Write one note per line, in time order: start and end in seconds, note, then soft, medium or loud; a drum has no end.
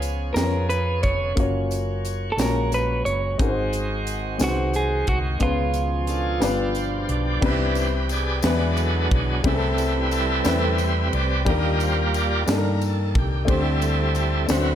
0.00 0.31 C#2 medium
0.00 0.31 C#3 medium
0.00 1.33 F3 medium
0.00 0.20 B3 medium
0.00 1.35 B3 medium
0.00 0.21 C#4 medium
0.00 3.34 C#4 soft
0.00 0.21 F4 medium
0.00 0.21 G#4 medium
0.00 1.33 G#4 medium
0.00 0.25 C#5 loud
0.00 closed hi-hat soft
0.00 tambourine medium
0.33 1.05 F2 medium
0.33 1.21 B3 medium
0.33 1.22 C#4 medium
0.33 1.22 F4 medium
0.33 1.23 G#4 medium
0.33 0.66 A#4 medium
0.33 0.42 A#4 medium
0.33 snare medium
0.33 closed hi-hat medium
0.33 tambourine medium
0.44 1.27 C#5 medium
0.69 1.01 B4 medium
0.69 closed hi-hat soft
0.69 tambourine soft
1.03 1.34 F1 medium
1.03 1.34 C#5 medium
1.03 kick medium
1.03 closed hi-hat soft
1.35 2.34 F#1 loud
1.35 2.23 A#3 medium
1.35 2.23 C#4 medium
1.35 2.24 F4 medium
1.35 2.25 F#4 medium
1.35 kick loud
1.35 closed hi-hat medium
1.40 3.39 F#3 medium
1.40 2.25 C#5 medium
1.71 closed hi-hat soft
1.71 tambourine medium
2.05 closed hi-hat medium
2.05 tambourine soft
2.32 2.38 A4 medium
2.36 3.01 A#1 medium
2.36 2.44 G#3 soft
2.36 3.25 C#4 medium
2.36 3.25 F4 medium
2.36 3.26 F#4 medium
2.36 snare medium
2.36 closed hi-hat medium
2.36 tambourine medium
2.41 3.28 A#2 medium
2.41 2.71 A#4 medium
2.41 3.26 C#5 medium
2.72 3.04 B4 medium
2.72 closed hi-hat soft
2.72 tambourine soft
3.05 3.37 F#1 medium
3.05 3.37 C#5 medium
3.05 closed hi-hat soft
3.38 4.36 G#1 medium
3.38 4.37 G#2 medium
3.38 5.39 D#3 medium
3.38 4.26 G#3 medium
3.38 5.40 G#3 medium
3.38 4.26 C4 medium
3.38 5.39 C4 medium
3.38 4.26 D#4 medium
3.38 5.40 F#4 medium
3.38 4.27 F#4 medium
3.38 3.47 A#4 medium
3.38 kick loud
3.38 closed hi-hat medium
3.49 4.31 C5 medium
3.73 closed hi-hat soft
3.73 tambourine soft
4.07 closed hi-hat soft
4.07 tambourine medium
4.38 5.04 C2 medium
4.38 5.26 G#3 medium
4.38 5.26 C4 medium
4.38 5.27 D#4 medium
4.38 5.27 F#4 medium
4.38 4.47 B4 medium
4.38 snare loud
4.38 closed hi-hat medium
4.38 tambourine loud
4.44 4.76 F#4 medium
4.49 5.31 C5 medium
4.73 5.06 G#4 medium
4.73 closed hi-hat soft
4.73 tambourine soft
5.07 5.39 C2 medium
5.07 5.18 F#4 medium
5.07 kick medium
5.07 closed hi-hat soft
5.39 6.38 C#2 loud
5.39 7.42 B2 medium
5.39 6.38 C#3 medium
5.39 6.41 F3 medium
5.39 6.27 G#3 medium
5.39 6.28 B3 medium
5.39 6.28 C#4 medium
5.39 6.42 C#4 medium
5.39 6.29 F4 medium
5.39 6.73 F4 medium
5.39 6.42 G#4 medium
5.39 kick loud
5.39 closed hi-hat medium
5.44 6.29 B4 medium
5.74 closed hi-hat soft
5.74 tambourine medium
6.07 6.41 D4 medium
6.07 7.06 F4 medium
6.07 6.78 A4 medium
6.07 closed hi-hat soft
6.07 tambourine medium
6.40 7.05 G1 medium
6.40 7.39 G2 medium
6.40 7.42 F3 medium
6.40 7.28 G3 medium
6.40 7.28 B3 medium
6.40 7.29 D4 medium
6.40 7.42 D4 soft
6.40 7.29 F4 medium
6.40 7.42 G4 medium
6.40 snare medium
6.40 closed hi-hat medium
6.40 tambourine medium
6.44 7.30 B4 medium
6.75 7.11 C5 medium
6.75 closed hi-hat soft
6.75 tambourine soft
7.09 7.40 B1 medium
7.09 7.45 D5 medium
7.09 closed hi-hat soft
7.41 8.40 C2 loud
7.41 8.40 C3 medium
7.41 7.88 E3 medium
7.41 8.29 G3 medium
7.41 7.88 G3 medium
7.41 8.30 B3 medium
7.41 8.30 C4 medium
7.41 7.89 D4 medium
7.41 7.50 D#4 medium
7.41 8.40 G4 medium
7.41 8.11 B4 medium
7.41 8.31 B4 medium
7.41 7.56 E5 medium
7.41 kick loud
7.41 crash medium
7.50 8.34 E4 medium
7.71 7.77 D5 medium
7.75 7.94 C5 medium
7.75 ride soft
7.75 tambourine medium
8.09 9.08 G#4 medium
8.09 9.08 B4 medium
8.09 8.81 D5 loud
8.09 ride soft
8.09 tambourine medium
8.42 9.07 E2 loud
8.42 9.41 E3 medium
8.42 9.42 F#3 medium
8.42 9.30 G#3 medium
8.42 9.31 B3 medium
8.42 9.41 B3 medium
8.42 9.31 D4 medium
8.42 9.32 E4 medium
8.42 snare loud
8.42 ride medium
8.42 tambourine loud
8.47 9.42 D4 medium
8.47 9.32 B4 medium
8.77 9.10 A4 medium
8.77 ride soft
8.77 tambourine medium
9.11 9.42 B1 medium
9.11 9.44 G#4 medium
9.11 kick loud
9.11 ride soft
9.44 10.41 C2 loud
9.44 10.42 C3 medium
9.44 10.31 G3 medium
9.44 11.43 G3 medium
9.44 10.31 A3 medium
9.44 10.32 C4 medium
9.44 10.32 E4 medium
9.44 9.53 G#4 medium
9.44 11.44 B4 medium
9.44 kick loud
9.44 ride medium
9.48 11.44 C4 medium
9.48 10.10 E4 medium
9.48 9.77 A4 loud
9.54 10.36 A4 medium
9.78 9.94 A4 medium
9.78 ride soft
9.78 tambourine medium
10.11 11.08 E4 medium
10.11 10.75 A4 loud
10.11 ride soft
10.11 tambourine medium
10.44 11.09 E2 loud
10.44 11.32 G3 medium
10.44 11.32 A3 medium
10.44 11.32 C4 medium
10.44 11.33 E4 medium
10.44 11.33 B4 medium
10.44 snare loud
10.44 ride medium
10.44 tambourine loud
10.78 10.96 C5 medium
10.78 ride soft
10.78 tambourine medium
11.13 11.44 C2 medium
11.13 11.45 D5 loud
11.13 ride soft
11.45 12.43 D#2 loud
11.45 12.44 D#3 medium
11.45 12.32 G3 medium
11.45 12.44 G3 medium
11.45 12.33 A#3 medium
11.45 12.44 A#3 medium
11.45 12.34 D4 medium
11.45 12.34 D#4 medium
11.45 12.44 G4 medium
11.45 12.44 A#4 medium
11.45 kick loud
11.45 ride medium
11.49 12.45 F4 medium
11.49 12.35 A#4 medium
11.49 11.79 D#5 loud
11.80 11.97 C5 loud
11.80 ride soft
11.80 tambourine medium
12.14 12.50 D5 loud
12.14 ride soft
12.14 tambourine medium
12.46 13.17 G2 loud
12.46 13.34 G3 medium
12.46 13.34 A#3 medium
12.46 13.34 D4 medium
12.46 13.35 D#4 medium
12.46 snare loud
12.46 ride medium
12.46 tambourine loud
12.50 12.55 A4 medium
12.50 12.84 A#4 loud
12.57 13.39 A#4 medium
12.81 ride soft
12.81 tambourine medium
12.86 13.10 A4 medium
13.11 13.16 A4 medium
13.15 13.46 C2 medium
13.15 13.51 G4 medium
13.15 kick loud
13.15 ride soft
13.45 14.45 D2 loud
13.45 14.44 D3 medium
13.45 14.33 A3 medium
13.45 14.34 C4 medium
13.45 14.34 D4 medium
13.45 14.35 G4 medium
13.45 kick loud
13.45 ride medium
13.49 14.46 G3 medium
13.49 14.47 C4 medium
13.49 14.47 E4 medium
13.49 14.17 A4 loud
13.49 14.35 C5 loud
13.82 ride soft
13.82 tambourine medium
14.15 14.48 A4 medium
14.15 ride soft
14.15 tambourine medium
14.46 14.75 D2 loud
14.46 14.75 D3 medium
14.46 14.75 A3 medium
14.46 14.75 C4 medium
14.46 14.75 D4 medium
14.46 14.55 E4 soft
14.46 14.75 C5 medium
14.46 snare loud
14.46 ride medium
14.46 tambourine loud
14.51 14.75 F#3 medium
14.51 14.75 C4 medium
14.51 14.75 E4 medium
14.51 14.75 F#4 medium
14.51 14.75 B4 loud
14.56 14.75 F#4 medium